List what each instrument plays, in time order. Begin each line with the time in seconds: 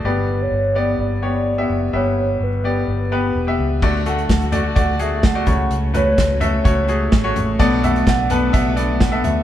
0.04 fingered electric bass G1, grand piano G2 B3 G4 D5, soft synth lead B4
0.42 soft synth lead C#5
0.52 fingered electric bass G1
0.75 grand piano B3 G4 D5, soft synth lead D5
0.99 fingered electric bass G1, soft synth lead D5
1.22 grand piano B3 G4 C#5, soft synth lead D5
1.58 grand piano B3 G4 E5
1.70 fingered electric bass F#1
1.93 fingered electric bass G1, grand piano G2 B3 G4 E5, soft synth lead C#5
2.40 fingered electric bass G1, soft synth lead B4
2.64 grand piano B3 G4 D5
2.88 fingered electric bass G1
3.12 grand piano B3 G4 B4
3.35 fingered electric bass E1
3.47 grand piano B3 G4 E5
3.59 fingered electric bass C#2
3.82 fingered electric bass D2, grand piano D3 A3 F#4 D5, string section D3 A3 F#4, kick, crash
4.06 grand piano A3 F#4 A4, soft synth lead F#5, closed hi-hat
4.18 closed hi-hat
4.29 fingered electric bass D2, soft synth lead F#5, kick, snare, closed hi-hat
4.41 closed hi-hat
4.52 grand piano A3 F#4 D5, soft synth lead A5, closed hi-hat, floor tom
4.75 fingered electric bass D2, grand piano A3 F#4 D5, soft synth lead F#5, kick, closed hi-hat
4.99 grand piano A3 F#4 G#4, soft synth lead E5, closed hi-hat
5.23 soft synth lead F#5, kick, snare, closed hi-hat
5.35 grand piano A3 F#4 D5
5.46 fingered electric bass C#2, grand piano C#3 A3 F#4 C#5, string section F#3 C#4, soft synth lead F#5, kick, closed hi-hat, floor tom
5.70 fingered electric bass C#2, closed hi-hat
5.94 grand piano A3 F#4 B4, soft synth lead C#5, closed hi-hat, floor tom
6.18 fingered electric bass C#2, kick, snare, closed hi-hat
6.40 grand piano A3 F#4 E5, soft synth lead C#5, closed hi-hat, floor tom
6.64 fingered electric bass C#2, grand piano A3 F#4 C#5, kick, closed hi-hat
6.88 grand piano A3 F#4 G#4, closed hi-hat
7.12 fingered electric bass A1, kick, snare, closed hi-hat
7.24 grand piano A3 F#4 C#5
7.36 fingered electric bass A1, closed hi-hat, floor tom
7.59 fingered electric bass B1, grand piano B2 B3 A4 D5, steel-string acoustic guitar B2 F#3 A3 D4 F#4, string section B3 D4, kick, closed hi-hat
7.83 steel-string acoustic guitar A3 D4 F#4, grand piano B3 A4 E5, soft synth lead F#5, closed hi-hat, floor tom
7.96 closed hi-hat
8.06 fingered electric bass B1, steel-string acoustic guitar F#3 A3 D4 F#4, soft synth lead F#5, kick, snare, closed hi-hat
8.30 steel-string acoustic guitar A3 D4 F#4, grand piano B3 A4 B4, soft synth lead A5, closed hi-hat, floor tom
8.53 fingered electric bass B1, steel-string acoustic guitar B2 F#3 A3 D4 F#4, grand piano B3 A4 E5, soft synth lead F#5, kick, closed hi-hat
8.76 steel-string acoustic guitar A3 D4 F#4, grand piano B3 A4 D5, soft synth lead E5, closed hi-hat
9.00 steel-string acoustic guitar F#3 A3 D4 F#4, soft synth lead F#5, kick, snare, closed hi-hat
9.11 grand piano B3 A4 E5
9.24 fingered electric bass D2, steel-string acoustic guitar A3 D4 F#4, soft synth lead E5, closed hi-hat, floor tom